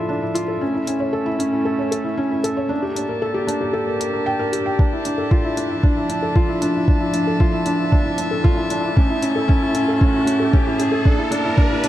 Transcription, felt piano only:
Already playing: D4 E4 F4 A4
0.09 D4
0.22 E4
0.34 F4
0.48 A4
0.61 C#4
0.75 E4
0.88 C#4
1.00 C#5
1.13 A4
1.26 E4
1.39 C#4
1.52 E4
1.65 A4
1.79 C#5
1.91 A4
2.04 E4
2.17 C#4
2.30 E4
2.44 A4
2.57 C#5
2.69 D4
2.83 G4
2.95 D4
3.09 A#4
3.22 A4
3.34 G4
3.47 D4
3.61 G4
3.73 A4
3.87 A#4
4.00 A#4
4.13 A#4
4.26 G5
4.39 A#4
4.52 G4
4.66 G5
4.79 D4
4.92 E4
5.05 D4
5.18 A4
5.31 F4
5.44 E4
5.57 D4
5.70 E4
5.83 D4
5.96 E4
6.09 D4
6.22 A4
6.36 F4
6.49 E4
6.62 D4
6.75 E4
6.88 D4
7.00 E4
7.14 D4
7.27 A4
7.40 F4
7.53 E4
7.66 D4
7.79 E4
7.92 D4
8.05 E4
8.18 D4
8.31 A4
8.44 F4
8.57 E4
8.70 D4
8.84 E4
8.96 C#4
9.10 E4
9.22 C#4
9.36 A4
9.48 C#4
9.62 E4
9.75 C#4
9.88 A4
10.01 C#4
10.14 E4
10.26 C#4
10.40 A4
10.53 C#4
10.67 E4
10.79 C#4
10.92 A4
11.05 D4
11.18 E4
11.31 D4
11.44 E4
11.57 D4
11.71 E4
11.84 D4

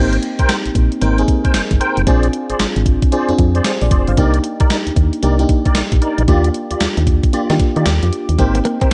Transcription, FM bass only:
Already playing: G#1
0.39 A#1
0.66 A#1
0.75 A#1
1.02 G#1
1.55 G1
1.71 G1
1.97 F1
2.07 A#1
2.50 G#1
2.59 G#1
2.76 G#1
3.29 F2
3.39 F2
3.82 A#1
3.91 F1
4.08 G1
4.17 C2
4.61 D#2
4.87 D#2
4.96 D#2
5.23 C2
5.76 A#1
5.92 A#1
6.18 A#1
6.28 D#2
6.71 D#2
6.81 D#2
6.97 D#2
7.50 D#3
7.76 D#3
7.86 D#2
8.03 F2
8.29 D#2
8.39 G#1
8.82 A#1

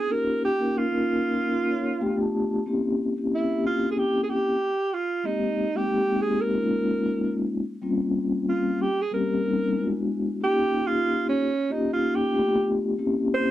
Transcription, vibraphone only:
0.08 A#3 C#4 D#4 F4 G4
0.59 A#3 C#4 D#4 F4 A#4
0.92 A#3 C#4 D#4 F4 A#4
1.70 C#5
1.88 F5
2.00 A3 B3 D4 F4 G4 G5
2.21 A5
2.66 A#3 C4 C#4 E4 G4
3.17 A#3 C4 C#4 E4 G4
3.49 A#3 C4 C#4 E4 G4
5.23 G#3 A#3 C4 D#4 G4
5.74 G#3 A#3 C4 D#4 G4
6.07 G#3 A#3 C4 D#4 G4
6.53 G#3 A#3 C#4 D#4 F4
7.82 G3 A#3 C4 C#4 F4
9.11 G3 A#3 C4 C#4 G4
9.43 G3 A#3 C4 C#4 D#4
9.75 G#3 B3 D4 E4 F4
9.84 F#4
10.40 A#3 C#4 D#4 F4 G4
11.69 A#3 C#4 D#4 F4 G4
12.02 A#3 C#4 D#4 F4 G4
12.34 A3 A#3 D4 F4 G4
12.41 B3
12.98 A#3 C4 C#4 E4 G4

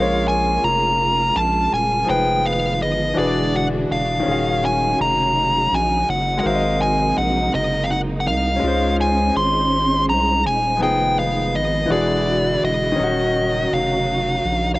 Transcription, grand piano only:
Already playing: G#3 A#3 F4
0.02 C#5
2.05 F3 D#4 G#4
2.10 B4
3.14 E3 D4 F#4
3.18 G#4 B4
3.26 D5
4.20 D#3 C#4
4.26 F4 G#4
4.31 F#4 F5
6.37 G#3 F#4
6.43 A#4 C5
6.49 E5
6.55 D#5
8.56 G#3 C#4
8.64 F4 C5
10.77 F3 B3 D#4
10.83 G#4
11.86 D3 E3 F#4
11.92 G#4
12.92 D#3 C#4
13.00 D#4 F#4

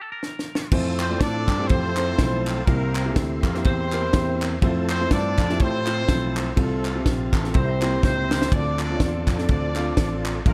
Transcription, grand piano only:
0.72 A3 C4 E4 F4 C5
1.10 A3 C4 E4 F4 D5
1.59 A3 C4 E4 F4 G4
1.97 A3 C4 E4 F4 C5
2.18 F3 A3 C4 E4 C5
2.68 C3 A#3 C4 E4 G4 C5
3.06 A#3 C4 E4 G4 G#4
3.12 A4
3.54 A#3 C4 E4 G4 C5
3.93 A#3 C4 E4 G4 A#4
4.14 A#3 C4 E4 G4 C5
4.63 A3 C4 E4 F4 C5
5.01 A3 C4 E4 F4 C5
5.50 A3 C4 E4 F4 G4
5.87 A3 C4 E4 F4 C5
6.08 F3 A3 C4 E4 C5
6.56 C3 C4 F4 A4
6.95 C4 F4 G4
7.44 C4 F4 A4
7.55 C3
7.82 A#3 C4 E4 G4 C5
8.03 A#3 C4 D#4 G4 C5
8.10 E4
8.53 D3 C4 D4 F4 A4 D5
8.90 C4 D4 F4 A4 C#5
8.97 D5
9.39 C4 D4 F4 A4 D5
9.76 C4 D4 F4 A4 F5
9.97 C4 D4 F4 A4 D5
10.47 A#2 A#3 D4 F4 A4 D5

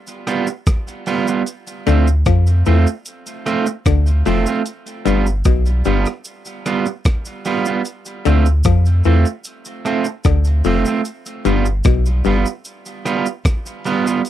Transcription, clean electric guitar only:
0.27 G3 B3 F4
0.48 muted clean electric guitar stroke
1.07 G3 B3 F4
1.28 G3 B3 F4
1.87 A3 C4 F4
2.66 A3 C4 F4
3.46 A3 C4 F4
3.68 muted clean electric guitar stroke
4.26 A3 C4 F4
4.47 A3 C4 F4
5.05 G3 B3 F4
5.86 G3 B3 F4
6.66 G3 B3 F4
6.87 muted clean electric guitar stroke
7.46 G3 B3 F4
7.67 G3 B3 F4
8.26 A3 C4 F4
9.06 A3 C4 F4
9.85 A3 C4 F4
10.07 muted clean electric guitar stroke
10.66 A3 C4 F4
10.87 A3 C4 F4
11.45 G3 B3 F4
12.26 G3 B3 F4
13.05 G3 B3 F4
13.85 G3 B3 F4
14.07 G3 B3 F4

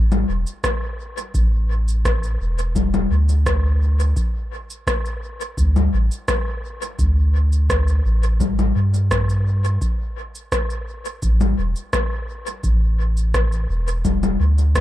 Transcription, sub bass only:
Already playing: A1
0.29 E1
1.34 A1
2.41 E1
3.11 D2
5.57 D2
5.93 A1
6.99 D2
8.05 A1
8.76 G2
11.22 A1
11.58 E1
12.64 A1
13.69 E1
14.40 D2

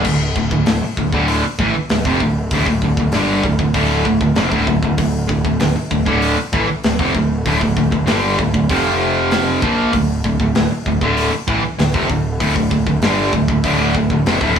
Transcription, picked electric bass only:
0.05 D1
0.36 D1
0.51 D1
0.67 D1
0.82 muted picked electric bass stroke
0.98 D1
1.12 D1
1.44 muted picked electric bass stroke
1.59 A1
1.75 muted picked electric bass stroke
1.90 D1
2.05 F1
2.21 D1
2.51 D1
2.66 D1
2.82 D1
2.97 D1
3.13 G1
3.43 D1
3.59 D1
3.74 D1
4.05 D1
4.20 D1
4.36 F1
4.52 D1
4.67 D1
4.83 D1
4.98 D1
5.29 D1
5.44 D1
5.61 D1
5.77 muted picked electric bass stroke
5.91 D1
6.06 D1
6.38 muted picked electric bass stroke
6.53 A1
6.69 muted picked electric bass stroke
6.84 D1
6.99 F1
7.15 D1
7.46 D1
7.61 D1
7.77 D1
7.92 D1
8.08 G1
8.39 D1
8.54 D1
8.70 F1
9.62 A#1
9.93 D1
10.24 D1
10.40 D1
10.55 D1
10.70 muted picked electric bass stroke
10.86 D1
11.01 D1
11.32 muted picked electric bass stroke
11.47 A1
11.62 muted picked electric bass stroke
11.79 D1
11.94 F1
12.09 D1
12.41 D1
12.56 D1
12.71 D1
12.87 D1
13.02 G1
13.33 D1
13.48 D1
13.64 D1
13.95 D1
14.10 D1
14.26 F1
14.41 D1

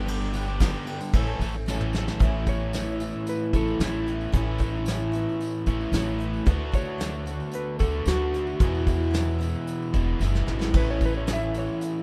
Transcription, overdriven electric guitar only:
0.07 G2 D3 G3 B3 D4 G4
0.34 G3 B3 D4 G4
0.48 G3 B3 D4 G4
0.60 G2 D3 G3 B3 D4 G4
1.00 muted overdriven electric guitar stroke
1.14 A2 E3 A3 C#4 A4
1.28 A3 C#4 A4
1.41 E3 A3 C#4 A4
1.55 muted overdriven electric guitar stroke
1.68 A2 E3 A3 C#4 A4
1.95 E3 A3 C#4 A4
2.08 A3 C#4 A4
2.22 A2 E3 A3 C#4 E4
3.54 A2 E3 A3 C#4 E4
3.81 A2 E3 A3 C#4 E4
4.34 A2 E3 A3 C#4 E4
5.67 A2 E3 A3 C#4 E4
5.93 A2 E3 A3 C#4 E4
6.46 D3 A3 D4 F#4
7.80 D3 A3 D4 F#4
8.07 D3 A3 D4 F#4
8.60 E2 B2 E3 G#3 B3 E4
9.93 E2 B2 E3 G#3 B3 E4
10.21 E2 B2 E3 G#3 B3 E4
10.74 A2 E3 A3 C#4 E4

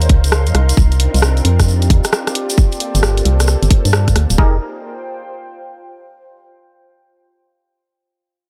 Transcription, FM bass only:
Already playing: D#2
0.10 C#2
0.47 F2
0.55 C2
0.77 C2
1.14 C2
1.45 F2
1.90 D#2
2.95 G1
3.25 C2
3.63 G1
3.85 G2
4.16 D2
4.30 D1
4.38 F1

